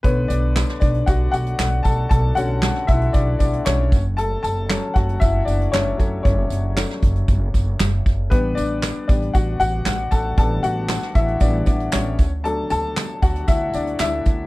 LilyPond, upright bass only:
\new Staff \with { instrumentName = "Upright bass" } { \clef bass \time 4/4 \key b \minor \tempo 4 = 116 b,,8 b,,8. r16 b,,8 b,,8 b,,8 b,,8 b,,8 | b,,8 b,,8. r16 b,,8 b,,8 b,,8 b,,8 fis,,8~ | fis,,8 fis,,8. r16 fis,,8 fis,,8 fis,,8 fis,,8 fis,,8 | fis,,8 fis,,8. r16 fis,,8 fis,,8 fis,,8 fis,,8 fis,,8 |
a,,8 a,,8. r16 a,,8 a,,8 a,,8 a,,8 a,,8 | a,,8 a,,8. r16 a,,8 a,,8 a,,8 a,,8 d,8~ | d,8 d,8. r16 d,8 d,8 d,8 d,8 d,8 | }